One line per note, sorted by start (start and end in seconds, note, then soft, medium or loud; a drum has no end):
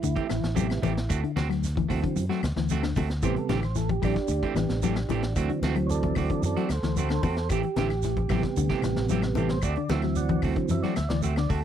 0.00 0.15 D2 loud
0.00 0.20 D3 medium
0.00 1.32 E4 loud
0.00 muted clean electric guitar stroke soft
0.00 closed hi-hat medium
0.00 high conga soft
0.00 shekere loud
0.16 0.28 E3 medium
0.16 0.28 A3 medium
0.16 0.29 C4 medium
0.16 0.29 G4 medium
0.16 kick medium
0.16 closed hi-hat soft
0.29 0.42 A1 medium
0.29 0.46 E3 medium
0.29 snare medium
0.29 closed hi-hat medium
0.29 claves medium
0.29 shekere soft
0.43 0.80 A1 medium
0.43 snare medium
0.43 closed hi-hat soft
0.55 0.80 C3 medium
0.55 0.69 E3 medium
0.55 0.73 F#3 medium
0.55 0.80 G3 soft
0.55 0.69 A3 medium
0.55 0.81 B3 medium
0.55 0.69 C4 medium
0.55 0.68 G4 medium
0.55 closed hi-hat medium
0.55 high conga medium
0.55 shekere loud
0.69 muted clean electric guitar stroke medium
0.69 snare medium
0.69 closed hi-hat soft
0.69 claves medium
0.82 1.07 A1 loud
0.82 0.96 E3 medium
0.82 0.99 E3 medium
0.82 0.95 A3 medium
0.82 0.95 C4 medium
0.82 0.94 G4 medium
0.82 closed hi-hat medium
0.82 high conga loud
0.82 low conga medium
0.82 shekere soft
0.96 muted clean electric guitar stroke medium
0.96 snare medium
0.96 closed hi-hat soft
1.09 1.22 D2 loud
1.09 1.23 A3 medium
1.09 1.22 C4 medium
1.09 1.22 F#4 medium
1.09 kick loud
1.09 closed hi-hat medium
1.09 high conga soft
1.09 claves medium
1.09 shekere loud
1.23 1.40 D3 medium
1.23 muted clean electric guitar stroke medium
1.23 closed hi-hat soft
1.36 1.86 D2 loud
1.36 1.49 C4 loud
1.36 1.49 F#4 loud
1.36 snare medium
1.36 closed hi-hat medium
1.36 high conga loud
1.36 low conga medium
1.36 shekere soft
1.50 1.66 F#3 medium
1.50 muted clean electric guitar stroke medium
1.50 snare soft
1.50 closed hi-hat soft
1.50 claves medium
1.63 snare soft
1.63 closed hi-hat medium
1.63 high conga soft
1.63 shekere medium
1.76 1.93 E3 medium
1.76 muted clean electric guitar stroke soft
1.76 kick medium
1.76 closed hi-hat soft
1.76 high conga medium
1.89 2.02 D2 medium
1.89 2.25 E3 medium
1.89 2.25 F#3 medium
1.89 2.03 A3 medium
1.89 2.02 C4 medium
1.89 2.26 C4 medium
1.89 2.01 F#4 medium
1.89 kick medium
1.89 open hi-hat medium
1.89 high conga medium
1.89 low conga medium
1.89 claves medium
1.89 shekere soft
2.03 2.19 D3 medium
2.03 muted clean electric guitar stroke medium
2.03 kick medium
2.03 closed hi-hat soft
2.03 high conga medium
2.16 2.29 F#2 loud
2.16 muted clean electric guitar stroke soft
2.16 closed hi-hat medium
2.16 high conga soft
2.16 shekere loud
2.29 2.46 F#3 medium
2.29 2.42 A3 medium
2.29 2.43 C4 medium
2.29 2.43 F#4 medium
2.29 snare soft
2.29 closed hi-hat soft
2.43 2.55 D2 medium
2.43 snare medium
2.43 closed hi-hat medium
2.43 low conga medium
2.43 claves medium
2.43 shekere soft
2.56 2.93 D2 medium
2.56 2.73 E3 medium
2.56 snare medium
2.56 closed hi-hat soft
2.69 2.84 A3 medium
2.69 2.84 C4 medium
2.69 2.83 F#4 medium
2.69 closed hi-hat medium
2.69 high conga medium
2.69 shekere medium
2.83 2.99 D3 medium
2.83 muted clean electric guitar stroke medium
2.83 snare medium
2.83 closed hi-hat soft
2.83 claves medium
2.96 3.21 D2 loud
2.96 3.10 A3 medium
2.96 3.10 C4 medium
2.96 3.09 F#4 medium
2.96 kick medium
2.96 open hi-hat medium
2.96 high conga loud
2.96 low conga medium
2.96 shekere soft
3.10 muted clean electric guitar stroke soft
3.10 snare medium
3.10 closed hi-hat soft
3.22 3.35 A1 loud
3.22 3.58 C3 medium
3.22 3.39 E3 medium
3.22 3.37 E3 medium
3.22 3.59 G3 medium
3.22 3.36 A3 medium
3.22 3.59 B3 medium
3.22 3.36 C4 medium
3.22 3.36 G4 medium
3.22 3.36 C5 loud
3.22 kick loud
3.22 closed hi-hat medium
3.22 claves medium
3.22 shekere medium
3.36 3.50 A4 loud
3.36 muted clean electric guitar stroke soft
3.36 closed hi-hat soft
3.49 3.99 A1 loud
3.49 3.66 D3 medium
3.49 3.63 E3 medium
3.49 3.62 A3 medium
3.49 3.61 C4 medium
3.49 3.62 G4 medium
3.49 3.63 G4 medium
3.49 snare medium
3.49 closed hi-hat medium
3.49 high conga loud
3.49 low conga medium
3.49 shekere soft
3.62 3.76 C5 medium
3.62 muted clean electric guitar stroke soft
3.62 snare soft
3.62 closed hi-hat soft
3.62 claves medium
3.76 3.92 E3 medium
3.76 3.89 A4 medium
3.76 snare soft
3.76 closed hi-hat medium
3.76 high conga soft
3.76 shekere medium
3.89 4.03 G4 loud
3.89 muted clean electric guitar stroke soft
3.89 kick medium
3.89 closed hi-hat soft
3.89 high conga loud
4.02 4.15 A1 medium
4.02 4.17 E3 medium
4.02 4.19 F#3 medium
4.02 4.17 A3 medium
4.02 4.16 C4 medium
4.02 5.60 D4 loud
4.02 4.16 G4 medium
4.02 5.33 G4 loud
4.02 kick medium
4.02 open hi-hat medium
4.02 low conga medium
4.02 claves medium
4.02 shekere soft
4.16 muted clean electric guitar stroke soft
4.16 kick medium
4.16 snare soft
4.16 closed hi-hat soft
4.28 4.41 D2 loud
4.28 muted clean electric guitar stroke soft
4.28 closed hi-hat medium
4.28 high conga soft
4.28 shekere loud
4.43 4.56 E3 medium
4.43 4.56 A3 medium
4.43 4.55 C4 medium
4.43 4.56 G4 medium
4.43 kick medium
4.43 closed hi-hat soft
4.54 4.68 A1 medium
4.54 4.80 C3 medium
4.54 4.72 E3 medium
4.54 4.80 G3 soft
4.54 4.80 B3 medium
4.54 muted clean electric guitar stroke soft
4.54 snare medium
4.54 closed hi-hat medium
4.54 low conga medium
4.54 claves medium
4.54 shekere soft
4.69 5.06 A1 medium
4.69 snare medium
4.69 closed hi-hat soft
4.82 4.96 E3 medium
4.82 4.99 F#3 medium
4.82 4.96 A3 medium
4.82 4.96 C4 medium
4.82 4.96 G4 medium
4.82 snare soft
4.82 closed hi-hat medium
4.82 high conga medium
4.82 shekere loud
4.95 muted clean electric guitar stroke soft
4.95 snare medium
4.95 closed hi-hat soft
4.95 claves medium
5.09 5.33 A1 loud
5.09 5.25 E3 medium
5.09 5.23 E3 medium
5.09 5.24 A3 medium
5.09 5.24 C4 medium
5.09 5.23 G4 medium
5.09 closed hi-hat medium
5.09 high conga loud
5.09 low conga medium
5.09 shekere soft
5.22 muted clean electric guitar stroke soft
5.22 snare medium
5.22 closed hi-hat soft
5.36 5.48 D2 medium
5.36 6.43 E3 medium
5.36 6.43 F#3 medium
5.36 5.50 A3 medium
5.36 5.50 C4 medium
5.36 6.44 C4 medium
5.36 5.51 F#4 loud
5.36 kick loud
5.36 closed hi-hat medium
5.36 high conga soft
5.36 claves medium
5.36 shekere medium
5.49 5.66 D3 medium
5.49 muted clean electric guitar stroke soft
5.49 closed hi-hat soft
5.62 6.12 D2 medium
5.62 5.77 A3 medium
5.62 5.77 C4 loud
5.62 5.77 F#4 loud
5.62 snare medium
5.62 closed hi-hat medium
5.62 high conga loud
5.62 low conga medium
5.62 shekere soft
5.76 5.92 F#3 medium
5.76 muted clean electric guitar stroke medium
5.76 closed hi-hat soft
5.76 claves medium
5.87 6.15 A4 loud
5.87 5.90 C#5 medium
5.87 6.16 D5 loud
5.87 closed hi-hat medium
5.87 shekere medium
6.03 6.20 E3 medium
6.03 muted clean electric guitar stroke soft
6.03 kick medium
6.03 closed hi-hat soft
6.03 high conga medium
6.15 6.29 D2 medium
6.15 6.30 A3 medium
6.15 6.30 C4 medium
6.15 6.30 F#4 medium
6.15 6.42 A4 medium
6.15 6.43 D5 loud
6.15 kick medium
6.15 open hi-hat medium
6.15 low conga medium
6.15 claves medium
6.15 shekere soft
6.29 6.47 D3 medium
6.29 muted clean electric guitar stroke soft
6.29 kick medium
6.29 closed hi-hat soft
6.42 6.55 F#2 loud
6.42 6.68 E3 soft
6.42 6.68 F#3 soft
6.42 6.68 C4 medium
6.42 6.69 A4 medium
6.42 6.70 D5 loud
6.42 muted clean electric guitar stroke soft
6.42 closed hi-hat medium
6.42 high conga soft
6.42 shekere medium
6.57 6.73 F#3 medium
6.57 6.70 A3 medium
6.57 6.70 C4 medium
6.57 6.70 F#4 medium
6.57 closed hi-hat soft
6.69 6.82 D2 medium
6.69 6.95 A4 medium
6.69 6.97 C5 medium
6.69 muted clean electric guitar stroke soft
6.69 snare medium
6.69 closed hi-hat medium
6.69 claves medium
6.69 shekere soft
6.83 7.19 D2 medium
6.83 7.00 E3 medium
6.83 snare medium
6.83 closed hi-hat soft
6.97 7.10 A3 medium
6.97 7.11 C4 medium
6.97 7.10 F#4 medium
6.97 7.22 A4 medium
6.97 7.23 C5 loud
6.97 closed hi-hat medium
6.97 high conga medium
6.97 shekere loud
7.09 7.27 D3 medium
7.09 muted clean electric guitar stroke soft
7.09 snare medium
7.09 closed hi-hat soft
7.09 claves medium
7.23 7.48 E2 loud
7.23 7.37 A3 medium
7.23 7.37 C4 medium
7.23 7.37 F#4 medium
7.23 7.48 A4 medium
7.23 7.49 C5 loud
7.23 kick medium
7.23 open hi-hat medium
7.23 high conga loud
7.23 low conga medium
7.23 shekere soft
7.36 muted clean electric guitar stroke medium
7.36 snare medium
7.36 closed hi-hat soft
7.49 7.62 A1 loud
7.49 7.64 E3 medium
7.49 7.67 E3 medium
7.49 7.64 A3 medium
7.49 7.63 C4 medium
7.49 9.07 G4 loud
7.49 7.63 G4 medium
7.49 kick loud
7.49 closed hi-hat medium
7.49 claves medium
7.49 shekere loud
7.63 muted clean electric guitar stroke soft
7.63 closed hi-hat soft
7.76 8.26 A1 loud
7.76 7.94 D3 medium
7.76 7.90 E3 medium
7.76 7.91 A3 medium
7.76 7.90 C4 medium
7.76 7.90 G4 medium
7.76 snare medium
7.76 closed hi-hat medium
7.76 high conga medium
7.76 low conga medium
7.76 shekere soft
7.90 muted clean electric guitar stroke soft
7.90 snare soft
7.90 closed hi-hat soft
7.90 claves medium
8.02 8.20 E3 medium
8.02 snare soft
8.02 closed hi-hat medium
8.02 high conga soft
8.02 shekere medium
8.16 muted clean electric guitar stroke medium
8.16 kick medium
8.16 closed hi-hat soft
8.16 high conga medium
8.28 8.42 A1 medium
8.28 9.58 C3 medium
8.28 8.43 E3 medium
8.28 8.47 F#3 medium
8.28 9.59 G3 medium
8.28 8.43 A3 medium
8.28 9.59 B3 medium
8.28 8.44 C4 medium
8.28 8.43 G4 medium
8.28 kick medium
8.28 snare soft
8.28 open hi-hat medium
8.28 high conga medium
8.28 low conga medium
8.28 claves medium
8.28 shekere soft
8.43 muted clean electric guitar stroke medium
8.43 kick medium
8.43 snare soft
8.43 closed hi-hat soft
8.43 high conga medium
8.56 8.69 D2 loud
8.56 8.73 D3 loud
8.56 muted clean electric guitar stroke soft
8.56 closed hi-hat medium
8.56 high conga soft
8.56 shekere loud
8.69 8.82 E3 medium
8.69 8.83 A3 medium
8.69 8.83 C4 medium
8.69 8.83 G4 medium
8.69 kick medium
8.69 snare soft
8.69 closed hi-hat soft
8.82 8.95 A1 medium
8.82 9.00 E3 medium
8.82 snare medium
8.82 closed hi-hat medium
8.82 low conga medium
8.82 claves medium
8.82 shekere soft
8.96 9.33 A1 medium
8.96 snare medium
8.96 closed hi-hat soft
9.09 9.23 E3 medium
9.09 9.26 F#3 medium
9.09 9.23 A3 medium
9.09 9.23 C4 medium
9.09 9.23 G4 medium
9.09 closed hi-hat medium
9.09 high conga medium
9.09 shekere loud
9.22 muted clean electric guitar stroke medium
9.22 snare medium
9.22 closed hi-hat soft
9.22 claves medium
9.35 9.61 A1 loud
9.35 9.50 E3 medium
9.35 9.53 E3 medium
9.35 9.50 A3 medium
9.35 9.50 C4 medium
9.35 9.49 G4 medium
9.35 9.49 A4 loud
9.35 closed hi-hat medium
9.35 high conga loud
9.35 low conga medium
9.35 shekere soft
9.49 9.63 C5 loud
9.49 muted clean electric guitar stroke soft
9.49 snare medium
9.49 closed hi-hat soft
9.62 9.75 D2 loud
9.62 9.77 A3 medium
9.62 9.76 C4 medium
9.62 9.76 F#4 medium
9.62 9.89 D5 loud
9.62 kick loud
9.62 closed hi-hat medium
9.62 high conga soft
9.62 claves medium
9.62 shekere medium
9.75 9.93 D3 medium
9.75 muted clean electric guitar stroke medium
9.75 closed hi-hat soft
9.89 10.39 D2 loud
9.89 10.69 E3 medium
9.89 10.69 F#3 medium
9.89 10.03 A3 medium
9.89 10.03 C4 medium
9.89 10.69 C4 medium
9.89 10.02 F#4 medium
9.89 10.17 E5 loud
9.89 snare medium
9.89 closed hi-hat soft
9.89 high conga loud
9.89 shekere soft
10.02 10.20 F#3 medium
10.02 muted clean electric guitar stroke soft
10.02 snare soft
10.02 closed hi-hat soft
10.02 claves medium
10.15 10.41 D5 loud
10.15 10.43 F#5 loud
10.15 closed hi-hat medium
10.15 high conga soft
10.15 shekere medium
10.28 10.46 E3 medium
10.28 muted clean electric guitar stroke soft
10.28 kick medium
10.28 closed hi-hat soft
10.28 high conga medium
10.42 10.55 D2 medium
10.42 10.57 A3 medium
10.42 10.57 C4 medium
10.42 10.57 F#4 medium
10.42 kick medium
10.42 open hi-hat medium
10.42 low conga medium
10.42 claves medium
10.42 shekere soft
10.56 10.73 D3 medium
10.56 muted clean electric guitar stroke soft
10.56 kick medium
10.56 closed hi-hat soft
10.69 10.82 F#2 loud
10.69 10.94 E3 soft
10.69 10.94 F#3 soft
10.69 10.94 C4 medium
10.69 10.83 E5 loud
10.69 muted clean electric guitar stroke soft
10.69 closed hi-hat medium
10.69 high conga loud
10.69 shekere loud
10.83 11.00 F#3 medium
10.83 10.96 A3 medium
10.83 10.96 C4 medium
10.83 10.96 F#4 medium
10.83 10.95 D5 loud
10.83 snare soft
10.83 closed hi-hat soft
10.83 high conga medium
10.96 11.09 D2 medium
10.96 11.09 E5 medium
10.96 muted clean electric guitar stroke soft
10.96 snare medium
10.96 closed hi-hat medium
10.96 claves medium
10.96 shekere soft
11.09 11.47 D2 medium
11.09 11.27 E3 medium
11.09 11.22 D5 loud
11.09 snare medium
11.09 closed hi-hat soft
11.09 low conga medium
11.22 11.36 A3 medium
11.22 11.36 C4 medium
11.22 11.35 F#4 medium
11.22 11.36 E5 loud
11.22 closed hi-hat medium
11.22 shekere loud
11.36 11.54 D3 medium
11.36 11.50 D5 medium
11.36 muted clean electric guitar stroke medium
11.36 snare medium
11.36 closed hi-hat soft
11.36 claves medium
11.49 11.64 D2 medium
11.49 11.63 A3 medium
11.49 11.62 C4 medium
11.49 11.62 F#4 medium
11.49 11.64 A4 loud
11.49 kick medium
11.49 open hi-hat medium
11.49 low conga medium
11.49 shekere soft